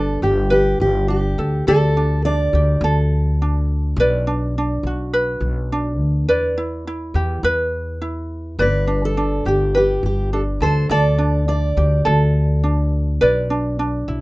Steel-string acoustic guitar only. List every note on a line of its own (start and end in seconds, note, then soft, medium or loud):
0.00 0.23 A4 medium
0.24 0.50 G4 medium
0.52 0.80 G4 medium
0.81 1.07 G4 medium
1.10 1.68 G4 medium
1.68 2.21 A4 loud
2.25 3.65 D5 loud
8.62 9.05 B4 medium
9.05 9.44 A4 medium
9.48 9.76 G4 medium
9.77 10.05 G4 medium
10.06 10.33 G4 medium
10.33 10.41 A4 medium
10.63 10.89 C5 loud
10.91 11.44 D5 loud
11.49 12.89 D5 loud